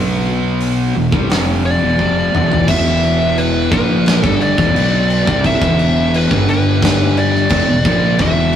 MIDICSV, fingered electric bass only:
0, 0, Header, 1, 2, 480
1, 0, Start_track
1, 0, Key_signature, 1, "minor"
1, 0, Tempo, 688863
1, 1868, Time_signature, 4, 2, 24, 8
1, 5963, End_track
2, 0, Start_track
2, 0, Title_t, "Fingered electric bass"
2, 0, Program_c, 0, 33
2, 0, Note_on_c, 0, 35, 98
2, 634, Note_off_c, 0, 35, 0
2, 661, Note_on_c, 0, 28, 83
2, 775, Note_off_c, 0, 28, 0
2, 786, Note_on_c, 0, 36, 91
2, 898, Note_off_c, 0, 36, 0
2, 905, Note_on_c, 0, 29, 92
2, 1241, Note_off_c, 0, 29, 0
2, 1263, Note_on_c, 0, 28, 99
2, 1377, Note_off_c, 0, 28, 0
2, 1389, Note_on_c, 0, 29, 89
2, 1612, Note_off_c, 0, 29, 0
2, 1629, Note_on_c, 0, 28, 90
2, 1852, Note_off_c, 0, 28, 0
2, 1869, Note_on_c, 0, 28, 103
2, 2561, Note_off_c, 0, 28, 0
2, 2588, Note_on_c, 0, 34, 97
2, 2923, Note_off_c, 0, 34, 0
2, 2950, Note_on_c, 0, 31, 94
2, 3173, Note_off_c, 0, 31, 0
2, 3193, Note_on_c, 0, 28, 99
2, 3303, Note_off_c, 0, 28, 0
2, 3307, Note_on_c, 0, 35, 95
2, 3643, Note_off_c, 0, 35, 0
2, 3674, Note_on_c, 0, 36, 95
2, 3895, Note_off_c, 0, 36, 0
2, 3912, Note_on_c, 0, 28, 97
2, 4362, Note_off_c, 0, 28, 0
2, 4396, Note_on_c, 0, 31, 97
2, 5203, Note_off_c, 0, 31, 0
2, 5231, Note_on_c, 0, 29, 91
2, 5340, Note_off_c, 0, 29, 0
2, 5351, Note_on_c, 0, 28, 88
2, 5460, Note_off_c, 0, 28, 0
2, 5472, Note_on_c, 0, 34, 93
2, 5692, Note_off_c, 0, 34, 0
2, 5707, Note_on_c, 0, 28, 98
2, 5963, Note_off_c, 0, 28, 0
2, 5963, End_track
0, 0, End_of_file